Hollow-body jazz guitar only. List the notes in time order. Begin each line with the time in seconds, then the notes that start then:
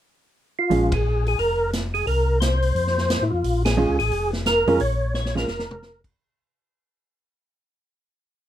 0.70 F3 G#3 C#4
3.77 G#3 C#4 F4
4.68 G#3 C#4 F4
5.35 G#3 C#4 F4